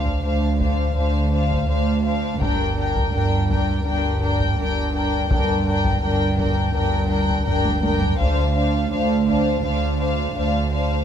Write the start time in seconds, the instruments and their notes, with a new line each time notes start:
Already playing: cello section D2, double bass section D2, synth drone D2, violin section D4 C5 F5
0.06 taiko
0.24 cello section D2, double bass section D2, violin section D4 C5 F5
0.60 violin section D4 C5 F5, taiko
0.96 cello section D2, double bass section D2, violin section D4 C5 F5
1.32 violin section D4 C5 F5
1.51 taiko
1.69 double bass section D2, cello section D2, violin section D4 C5 F5
2.06 violin section D4 C5 F5
2.41 double bass section G1, synth drone D2, cello section G2, violin section D4 A#4 G5, taiko
2.77 violin section D4 A#4 G5
2.96 taiko
3.13 double bass section G1, cello section G2, violin section D4 A#4 G5
3.49 violin section D4 A#4 G5, taiko
3.85 double bass section G1, cello section G2, violin section D4 A#4 G5
4.21 violin section D4 A#4 G5
4.40 taiko
4.58 double bass section G1, cello section G2, violin section D4 A#4 G5
4.94 violin section D4 A#4 G5
5.30 double bass section G1, synth drone D2, cello section G2, violin section D4 A#4 G5, taiko
5.67 violin section D4 A#4 G5
5.85 taiko
6.02 double bass section G1, cello section G2, violin section D4 A#4 G5
6.38 violin section D4 A#4 G5, taiko
6.74 double bass section G1, cello section G2, violin section D4 A#4 G5
7.10 violin section D4 A#4 G5
7.29 taiko
7.46 double bass section G1, cello section G2, violin section D4 A#4 G5, taiko low-mid
7.65 taiko high
7.83 violin section D4 A#4 G5, taiko high
8.01 taiko low
8.19 double bass section D2, cello section D2, synth drone D2, violin section D4 C5 F5, taiko
8.55 violin section D4 C5 F5
8.91 double bass section D2, cello section D2, violin section D4 C5 F5
9.28 violin section D4 C5 F5, taiko
9.64 double bass section D2, cello section D2, violin section D4 C5 F5
10.00 violin section D4 C5 F5
10.36 double bass section D2, cello section D2, violin section D4 C5 F5
10.72 violin section D4 C5 F5